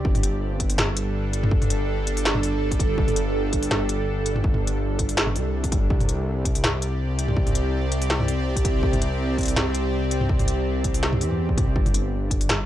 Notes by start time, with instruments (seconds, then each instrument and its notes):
0.05 detuned saw bass G1, synth drone G3 D4 A4, kick
0.15 mid tom, open hi-hat
0.23 closed hi-hat
0.60 kick, closed hi-hat
0.70 open hi-hat
0.78 snare, mid tom
0.97 closed hi-hat
1.33 closed hi-hat
1.43 mid tom
1.51 detuned saw bass G1, kick
1.62 mid tom, open hi-hat
1.70 closed hi-hat
2.07 closed hi-hat
2.17 open hi-hat
2.25 snare
2.35 mid tom
2.43 open hi-hat
2.71 kick, open hi-hat
2.80 kick, closed hi-hat
2.98 detuned saw bass G1, kick
3.08 mid tom, open hi-hat
3.16 closed hi-hat
3.53 kick, closed hi-hat
3.63 open hi-hat
3.71 snare, mid tom
3.89 closed hi-hat
4.26 closed hi-hat
4.36 mid tom
4.44 detuned saw bass G1, kick
4.54 mid tom
4.67 closed hi-hat
4.99 kick, closed hi-hat
5.09 open hi-hat
5.17 snare
5.27 mid tom
5.36 detuned saw bass C2, open hi-hat
5.64 kick, open hi-hat
5.72 detuned saw bass G1, kick, closed hi-hat
5.90 detuned saw bass C2, synth drone C4 G4 D5, kick
6.01 mid tom, open hi-hat
6.09 closed hi-hat
6.45 kick, closed hi-hat
6.55 open hi-hat
6.64 snare, mid tom
6.82 closed hi-hat
7.19 closed hi-hat
7.28 mid tom
7.37 detuned saw bass C2, kick
7.47 mid tom, open hi-hat
7.55 closed hi-hat
7.92 closed hi-hat
8.02 open hi-hat
8.10 snare
8.20 mid tom
8.28 open hi-hat
8.56 kick, open hi-hat
8.65 kick, closed hi-hat
8.83 detuned saw bass C2, kick
8.93 mid tom, open hi-hat
9.02 closed hi-hat
9.38 kick, closed hi-hat
9.41 closed hi-hat
9.43 closed hi-hat
9.46 closed hi-hat, open hi-hat
9.56 snare, mid tom
9.75 closed hi-hat
10.11 closed hi-hat
10.21 mid tom
10.29 detuned saw bass C2, kick
10.39 mid tom, open hi-hat
10.48 closed hi-hat
10.84 kick, closed hi-hat
10.94 open hi-hat
11.03 snare
11.13 mid tom
11.21 detuned saw bass E2, open hi-hat
11.31 mid tom
11.49 kick
11.57 detuned saw bass C2, kick, closed hi-hat, mid tom
11.76 detuned saw bass G1, synth drone G3 D4 A4, kick
11.86 mid tom, open hi-hat
11.94 closed hi-hat
12.31 kick, closed hi-hat
12.41 open hi-hat
12.49 snare, mid tom